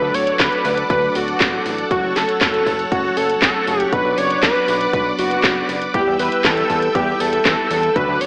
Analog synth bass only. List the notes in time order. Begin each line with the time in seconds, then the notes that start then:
0.02 D2
0.14 D1
0.40 D2
0.65 D2
0.90 D2
1.15 D1
1.40 A1
1.66 A1
1.91 F#1
2.04 F#1
2.16 F#1
2.41 F#1
2.67 F#1
2.92 F#1
3.17 F#1
3.42 F#1
3.67 F#1
3.93 B1
4.05 B1
4.18 F#1
4.43 B1
4.68 B1
4.93 B1
5.19 F#1
5.44 F#1
5.69 F#1
5.94 E2
6.07 E2
6.20 E2
6.45 E2
6.70 E2
6.95 E2
7.20 E2
7.45 E2
7.71 E2
7.96 D2
8.09 D2
8.21 D1